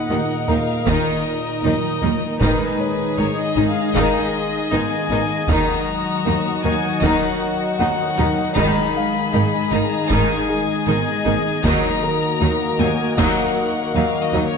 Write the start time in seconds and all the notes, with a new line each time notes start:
Already playing: A#2 D#3 D#4 G#4 B4 D#5 F#5
0.10 D#2 D#3 A#3 D#4 A#4
0.48 D#2 D#3 A#3 D#4 F5 A#5
0.87 D#2 D#3 D#4 D#5, taiko
1.64 D#2 D#3 F#3 D#4 D#5
2.03 D#2 D#3 F#3 D#4
2.40 G#1 G#2 D#3 G#3 D#4 G#4 B4 D#5, taiko
2.80 C#5
3.18 G#1 G#2 D#3 D#4 C#5
3.43 D#5
3.57 G#1 G#2 D#3 D#4
3.69 F5
3.95 G#1 G#2 D#3 G#3 D#4 G#4 D#5 F5, taiko
4.72 G#1 G#2 D#3 B3 D#4 G#5
5.10 G#1 G#2 D#3 B3 D#4
5.49 D#2 D#3 F#3 D#4 F#4 A#5, taiko
6.26 D#2 D#3 A#3 D#4
6.64 D#2 D#3 A#3 D#4 G#5
7.03 D#2 D#3 D#4 F#5, taiko
7.78 D#2 D#3 F#3 D#4 F#5
8.18 D#2 D#3 F#3 D#4
8.56 G#1 G#2 D#3 G#3 D#4 G#4 D#5 B5, taiko
8.97 F5
9.33 G#1 G#2 D#3 D#4
9.71 G#1 G#2 D#3 D#4 A#5
10.10 G#1 G#2 D#3 G#3 D#4 G#5, taiko
10.49 G#4 G#5
10.87 G#1 G#2 D#3 B3 D#4 G#5
11.26 G#1 G#2 D#3 B3 D#4
11.63 D#2 D#3 F#3 A#3 D#4 F#4 A#4 A#5, taiko
12.03 A#4 A#5
12.41 D#2 F#3 A#3 D#4
12.79 D#2 F#3 A#3 D#4 G#5
13.17 D#2 D#3 F#3 D#4 D#5 F#5 D#6, taiko
13.95 D#2 F#3 D#4 F5
14.22 D#5
14.34 D#2 F#3 D#4
14.47 C#5